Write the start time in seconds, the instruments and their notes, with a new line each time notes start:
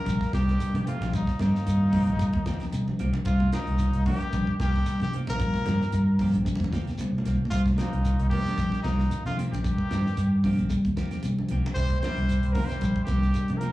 Already playing: trombone section A#2, trombone D#3, trumpet A#4
0.06 fingered electric bass A#1, clean electric guitar G3, kick, snare, closed hi-hat, shekere
0.21 kick, snare
0.32 fingered electric bass C2, trombone section G2, clean electric guitar D#3 F3 C4 G4, trombone D#3, trumpet G4, kick, snare, closed hi-hat, shekere
0.48 clean electric guitar C4 G4, snare
0.58 clean electric guitar G3, closed hi-hat, shekere
0.74 fingered electric bass C3, closed hi-hat, high conga
0.86 trombone section F2, trombone C3, clean electric guitar D#3 F3 A#3 C4 G4, trumpet F4, closed hi-hat, low conga, shekere
1.01 fingered electric bass A#1, snare, closed hi-hat, high conga
1.13 trombone section D#2, trombone A#2, clean electric guitar G3, trumpet D#4, kick, closed hi-hat, shekere
1.27 muted fingered electric bass stroke, kick, snare
1.39 trombone section D#2, fingered electric bass G2, trombone A#2, clean electric guitar D#3 F3 A#3 C4 G4, trumpet D#4, snare, closed hi-hat, high conga, shekere
1.55 snare
1.66 fingered electric bass G2, clean electric guitar D#3, closed hi-hat, shekere
1.92 clean electric guitar D#3 A#3 C4 G4, kick, open hi-hat, high conga, low conga, shekere
2.07 fingered electric bass A#1, closed hi-hat
2.19 clean electric guitar G3, kick, closed hi-hat, shekere
2.33 fingered electric bass D#2, kick, closed hi-hat
2.46 clean electric guitar D#3 F3 A#3 C4 G4, kick, snare, closed hi-hat, shekere
2.60 muted fingered electric bass stroke, snare, closed hi-hat, high conga
2.72 fingered electric bass C3, clean electric guitar G3, closed hi-hat, shekere
2.87 muted fingered electric bass stroke, high conga
2.99 fingered electric bass C2, clean electric guitar D#3 F3 A#3 C4 G4, closed hi-hat, low conga, shekere
3.14 high conga
3.25 fingered electric bass C2, trombone section F2, trombone C3, clean electric guitar G3, trumpet F4, kick, closed hi-hat, shekere
3.40 kick, low conga
3.52 trombone section D#2, trombone A#2, clean electric guitar D#3 F3 A#3 C4 G4, trumpet D#4, snare, closed hi-hat, high conga, shekere
3.67 fingered electric bass C2, closed hi-hat
3.78 clean electric guitar D#3, closed hi-hat, shekere
3.93 fingered electric bass C2, closed hi-hat
4.06 trombone section G2, clean electric guitar D#3 A#3 C4 G4, trombone D#3, trumpet G4, kick, open hi-hat, high conga, low conga, shekere
4.21 muted fingered electric bass stroke, closed hi-hat
4.33 fingered electric bass A#1, clean electric guitar G3, kick, closed hi-hat, high conga, shekere
4.47 kick
4.60 fingered electric bass C2, trombone section G2, trombone D#3, clean electric guitar D#3 F3 A#3 C4 G4, trumpet G4, kick, snare, closed hi-hat, shekere
4.74 snare
4.86 clean electric guitar G3, snare, closed hi-hat, shekere
5.00 trombone section G2, fingered electric bass C3, trombone D#3, trumpet G4, closed hi-hat, high conga
5.13 clean electric guitar D#3 F3 A#3 C4 G4, closed hi-hat, low conga, shekere
5.27 fingered electric bass A#1, trombone section A#2, trombone D#3, trumpet A#4, closed hi-hat, high conga
5.39 clean electric guitar G3, kick, closed hi-hat, shekere
5.54 muted fingered electric bass stroke, kick, snare, low conga
5.66 fingered electric bass G2, clean electric guitar D#3 F3 A#3 C4 G4, snare, closed hi-hat, high conga, shekere
5.81 snare
5.92 fingered electric bass G2, clean electric guitar D#3, closed hi-hat, shekere
6.19 clean electric guitar D#3 A#3 C4 G4, kick, open hi-hat, high conga, low conga, shekere
6.34 fingered electric bass A#1, closed hi-hat, high conga
6.45 clean electric guitar G3, kick, closed hi-hat, high conga, shekere
6.55 high conga
6.60 fingered electric bass D#2, kick, closed hi-hat
6.64 high conga
6.72 clean electric guitar D#3 F3 A#3 C4 G4, kick, snare, closed hi-hat, low conga, shekere
6.87 muted fingered electric bass stroke, snare, closed hi-hat, low conga
6.98 fingered electric bass C3, clean electric guitar G3, closed hi-hat, low conga, shekere
7.14 muted fingered electric bass stroke
7.18 low conga
7.24 fingered electric bass C2, clean electric guitar D#3 F3 A#3 C4, snare, closed hi-hat, low conga, shekere
7.45 low conga
7.50 fingered electric bass C2, trombone section F2, trombone C3, clean electric guitar G3, trumpet F4, kick, closed hi-hat, shekere
7.66 kick, snare, low conga
7.77 trombone A#2, clean electric guitar D#3 F3 A#3 C4 G4, trumpet D#4, snare, closed hi-hat, shekere
7.81 trombone section D#2, high conga
7.93 fingered electric bass C2, closed hi-hat
8.03 clean electric guitar D#3, closed hi-hat, shekere
8.20 fingered electric bass C2, closed hi-hat
8.30 trombone section G2, clean electric guitar D#3 G3 A#3 C4 G4, trombone D#3, trumpet G4, kick, open hi-hat, high conga, low conga, shekere
8.46 clean electric guitar A#3 C4, muted fingered electric bass stroke, snare, closed hi-hat, high conga
8.56 fingered electric bass A#1, clean electric guitar G3, kick, closed hi-hat, high conga, shekere
8.72 kick, snare
8.82 fingered electric bass C2, trombone A#2, clean electric guitar D#3 F3 A#3 C4 G4, trumpet D#4, kick, snare, closed hi-hat, shekere
8.89 trombone section D#2
8.99 snare, high conga
9.11 closed hi-hat, shekere
9.25 trombone section F2, fingered electric bass C3, trombone C3, trumpet F4, closed hi-hat, high conga
9.36 clean electric guitar D#3 F3 A#3 C4 G4, closed hi-hat, low conga, shekere
9.52 fingered electric bass A#1, trombone section G2, trombone D#3, trumpet G4, closed hi-hat, high conga
9.64 clean electric guitar G3, kick, closed hi-hat, shekere
9.78 muted fingered electric bass stroke, kick
9.90 fingered electric bass G2, clean electric guitar D#3 F3 A#3 C4 G4, snare, closed hi-hat, high conga, shekere
10.06 snare
10.17 fingered electric bass G2, clean electric guitar D#3, closed hi-hat, shekere
10.44 clean electric guitar D#3 A#3 C4 G4, kick, open hi-hat, high conga, low conga, shekere
10.58 fingered electric bass A#1, clean electric guitar A#3 C4 G4, closed hi-hat
10.70 clean electric guitar G3, kick, closed hi-hat, shekere
10.85 fingered electric bass D#2, kick, closed hi-hat
10.97 clean electric guitar D#3 F3 A#3 C4 G4, kick, snare, closed hi-hat, shekere
11.11 clean electric guitar A#3 C4 G4, muted fingered electric bass stroke, snare, closed hi-hat, high conga
11.23 fingered electric bass C3, clean electric guitar G3, closed hi-hat, shekere
11.39 muted fingered electric bass stroke, high conga
11.49 fingered electric bass C2, clean electric guitar D#3 F3 A#3 C4 G4, closed hi-hat, low conga, shekere
11.66 high conga
11.74 fingered electric bass C2, trombone section C3, clean electric guitar G3, trumpet C5, kick, closed hi-hat, shekere
11.79 trombone G3
11.90 kick, low conga
12.01 trombone section C3, clean electric guitar D#3 F3 A#3 C4 G4, trombone G3, trumpet C5, snare, closed hi-hat, high conga
12.05 shekere
12.17 fingered electric bass C2, closed hi-hat
12.28 clean electric guitar D#3, closed hi-hat, shekere
12.43 fingered electric bass C2, closed hi-hat
12.53 trombone section A#2, clean electric guitar D#3, trombone F3, trumpet A#4, kick, open hi-hat, high conga, low conga
12.57 clean electric guitar D#3 A#3 C4 G4, shekere
12.66 trombone section C3, trombone G3, trumpet C5, closed hi-hat
12.70 clean electric guitar A#3 C4 G4, muted fingered electric bass stroke, snare
12.81 fingered electric bass A#1, clean electric guitar G3, kick, snare, closed hi-hat, shekere
12.96 kick
13.04 trombone section G2, trombone D#3, trumpet G4, kick, snare, closed hi-hat
13.08 fingered electric bass C2, clean electric guitar D#3 F3 A#3 C4 G4, shekere
13.22 clean electric guitar A#3 C4 G4, snare
13.34 clean electric guitar G3, closed hi-hat, shekere
13.48 fingered electric bass C3, closed hi-hat, high conga
13.58 trombone section A#2, trombone F3, clean electric guitar F3, trumpet A#4, closed hi-hat
13.62 clean electric guitar D#3 A#3 C4 G4, low conga, shekere